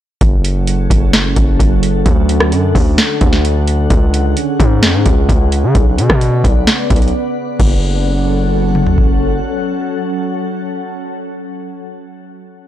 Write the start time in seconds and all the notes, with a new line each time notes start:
0.21 F#1 F#3 C#4 A4 F#5, kick, closed hi-hat
0.45 closed hi-hat
0.67 closed hi-hat
0.90 F#1, kick, closed hi-hat
1.13 snare, closed hi-hat
1.36 F#1, kick, closed hi-hat
1.60 F#1, kick, closed hi-hat
1.83 closed hi-hat
2.06 D2 D3 D4, kick, closed hi-hat
2.29 closed hi-hat
2.40 cross-stick
2.52 F#2, closed hi-hat
2.75 D2, kick, open hi-hat
2.98 snare, closed hi-hat
3.21 D2, kick, closed hi-hat
3.33 snare
3.45 closed hi-hat
3.67 closed hi-hat
3.90 C#2 C#3 C#4 G#4, kick, closed hi-hat
4.14 closed hi-hat
4.37 closed hi-hat
4.60 G#2, kick, closed hi-hat
4.83 F2, snare, closed hi-hat
4.94 G#2
5.06 C#2, kick, closed hi-hat
5.29 C#2, kick, closed hi-hat
5.52 closed hi-hat
5.63 C#3
5.75 B1 B3 B4 D5, kick, closed hi-hat
5.98 B2, closed hi-hat
6.10 B2, kick, cross-stick
6.21 closed hi-hat
6.44 B1, kick, closed hi-hat
6.67 snare, closed hi-hat
6.90 B1, kick, closed hi-hat
6.96 closed hi-hat
7.02 closed hi-hat
7.08 closed hi-hat
7.60 F#1 F#3 C#4 A4 F#5, kick, crash
8.75 mid tom
8.87 floor tom
8.98 kick